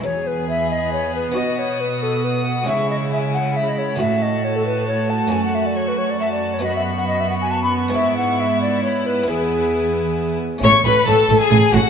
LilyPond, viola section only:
\new Staff \with { instrumentName = "Viola section" } { \time 3/4 \key e \major \tempo 4 = 136 b2.~ | b2. | gis2. | a2.~ |
\key a \major a2. | b2.~ | b2. | b2~ b8 r8 |
a8 a8 a8 a8 a8 a8 | }